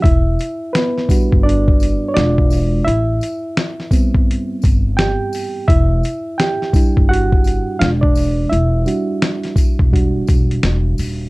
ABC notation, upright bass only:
X:1
M:4/4
L:1/16
Q:"Swing 16ths" 1/4=85
K:Em
V:1 name="Upright bass" clef=bass
E,,,2 z4 z G,,,4 z E,,,4 | A,,,2 z4 z G,,, z2 G,,,3 z3 | E,,,2 z4 z G,,,4 z E,,,4 | E,,,2 z4 z E,,,3 E,,,2 E,,,2 ^D,,,2 |]